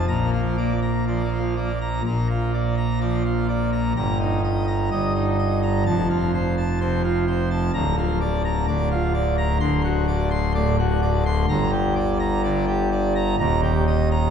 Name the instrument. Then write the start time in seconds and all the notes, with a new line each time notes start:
pipe organ
0.08 A#1 A#2 A#5
0.25 A#3
0.34 F4
0.41 F3
0.58 A#3 D5
0.82 A#5
1.07 F3 D5
1.24 A#3
1.32 F4
1.41 F3
1.57 A#3 D5
1.81 A#5
2.06 A#1 A#2 A#5
2.31 F4
2.54 D5
2.78 A#5
3.01 F3 D5
3.26 F4
3.49 D5
3.73 A#5
3.96 G1 G2 A#5
4.20 D#4
4.44 D#5
4.67 A#5
4.91 G1 G2 D#5
5.15 D#4
5.39 D#5
5.63 A#5
5.86 F1 F2 A5
6.10 F4
6.34 C5
6.58 A5
6.81 C3 C5
7.04 F4
7.27 C5
7.51 A5
7.74 D1 D2 A#5
7.98 F4
8.21 D5
8.45 A#5
8.68 D1 D2 D5
8.92 F4
9.14 D5
9.38 A#5
9.60 D1 D2 C6
9.84 F#4
10.08 D5
10.31 C6
10.55 A2 D5
10.79 F#4
11.02 D5
11.26 C6
11.49 G1 G2 A#5
11.72 G4
11.96 D5
12.20 A#5
12.44 D3 D5
12.68 G4
12.92 D5
13.15 A#5
13.39 D#1 D#2 A#5
13.63 G4
13.88 D#5
14.11 A#5